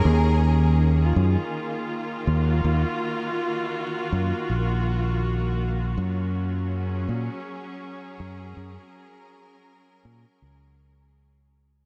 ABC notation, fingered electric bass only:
X:1
M:4/4
L:1/8
Q:"Swing 16ths" 1/4=81
K:Ebm
V:1 name="Fingered electric bass" clef=bass
E,,3 G,, z2 E,, E,, | z3 G,, B,,,4 | G,,3 B,, z2 G,, G,, | z3 B,, D,,4 |]